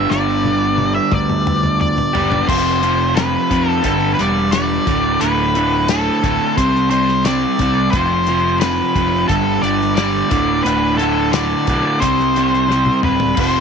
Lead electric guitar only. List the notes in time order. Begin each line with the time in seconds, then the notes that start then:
Already playing: E5
0.11 D5
0.95 E5
1.12 D5
1.81 D5
2.49 C5
3.15 B4
3.68 A4
3.85 A4
4.14 B4
4.21 D5
4.52 D5
5.21 B4
5.90 A4
6.57 C5
6.90 C5
7.25 D5
7.90 C5
8.60 B4
9.28 A4
9.62 D5
9.95 D5
10.63 B4
10.97 A4
11.32 D5
12.00 C5
13.04 B4
13.40 C5